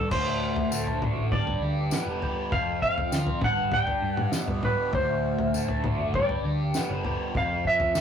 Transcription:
Already playing: G2 A4
0.11 D1 D2 C5, kick, floor tom, crash
0.56 floor tom
0.72 D1 A3, tambourine
0.87 floor tom
1.02 D3, floor tom, mid tom
1.15 A1
1.32 G1 G2 D5, kick, floor tom, mid tom
1.47 floor tom
1.60 D2 G4
1.91 B3, snare, tambourine
2.06 E1
2.22 G4, floor tom
2.52 F1 F2 F5, kick, floor tom
2.82 F5, kick
2.98 floor tom
3.12 D2 C4, snare, tambourine
3.27 floor tom
3.42 G1 G2 F#5, kick, floor tom, mid tom
3.72 D4 G5, floor tom, mid tom
3.87 floor tom
4.02 G2 G4
4.13 F#5, mid tom
4.32 B3, snare, tambourine
4.47 G2, floor tom
4.63 G4 B4, floor tom, mid tom
4.93 D1 D2 C5, kick, floor tom
5.39 floor tom
5.54 D1 A3, tambourine
5.69 floor tom
5.84 D3, floor tom, mid tom
5.98 F#1
6.14 G1 G2 D5, kick, floor tom, mid tom
6.29 floor tom
6.44 D2 G4
6.74 B3, snare, tambourine
6.90 F#1
6.95 C5
7.04 G4, floor tom
7.35 F1 F2 F5, kick, floor tom
7.65 E5, kick
7.80 floor tom
7.95 F1 C4, snare, tambourine

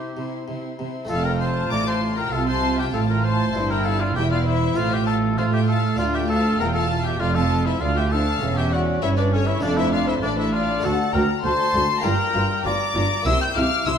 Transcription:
Already playing: C3 C4 E4 G4 C6
0.16 C3 C4 E4 C6
0.47 C3 C4 E4 C6
0.78 C3 C4 E4 C6
1.05 A3 C4 F4
1.09 F1 F2 A4 F5 A5
1.25 A#4 G5 A#5
1.40 C5 A5 C6
1.70 A1 A2 D5 A#5 D6
1.86 C5 A5 C6
2.16 A#4 G5 A#5
2.31 C2 C3 F4 A4 F5 A5
2.46 C5 A5 C6
2.77 G4 E5 G5
2.92 A1 A2 F4 A4 F5 A5
3.08 A#4 G5 A#5
3.23 C5 A5 C6
3.53 G1 G2 E4
3.70 A#4 G5 A#5
3.85 A4 F5 A5
4.00 F4 D5 F5
4.15 E1 E2 E4 G4 E5 G5
4.31 F4 D5 F5
4.46 E4 C5 E5
4.74 A1 A2 C4 F4 C5 F5
4.93 G4 E5 G5
5.07 A4 F5 A5
5.38 A2 A3 F4 C5 F5
5.53 G4 E5 G5
5.68 A4 F5 A5
5.96 D2 D4 F4 D5 F5
6.14 G4 E5 G5
6.28 A4 F5 A5
6.59 E1 E2 A#4 G5 A#5
6.74 A4 F5 A5
7.05 G4 E5 G5
7.20 F1 F2 F4 D5 F5
7.35 A4 F5 A5
7.66 E4 C5 E5
7.81 D2 F4 D5 F5
7.96 G4 E5 G5
8.11 D4 A4 F5 A5
8.39 E1 E2 C#4
8.57 G4 E5 G5
8.72 F#4 D5 F#5
9.02 G1 G2 C#4 E4 C#5 E5
9.17 D4 B4 D5
9.32 C#4 A4 C#5
9.47 E4 C#5 E5
9.59 F1 A3 D4 F4 A4 D5
9.63 F2
9.77 E4 C5 E5
9.92 F4 D5 F5
10.08 E4 C5 E5
10.22 A1 A2 D4 A4 D5
10.38 E4 C5 E5
10.52 F4 D5 F5
10.79 D2 A3 D4 F#4 F#5 A5
10.83 D2 A4
11.13 D2 F#4 A#4 G5 A#5
11.44 D2 F#4 C5 A5 C6
11.74 D2 F#4
12.00 G1 A#3 F4 G4 A#5
12.04 G2 A#4 G5
12.34 G1 G2 F4
12.64 G1 G2 F4 D5 A#5 D6
12.95 G1 G2 F4
13.22 C2 A#3 E4 G4 E5
13.26 C3 C6 E6
13.41 G5 E6 G6
13.55 C2 C3 E4 F5 D6 F6
13.86 C2 C3 E4 E5 C6 E6

